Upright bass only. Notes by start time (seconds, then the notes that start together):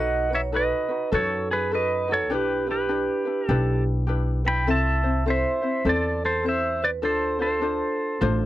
Already playing: B1
1.12 F#2
2.31 B1
3.49 B1
4.66 C2
5.85 E2
7.04 D2
8.22 A1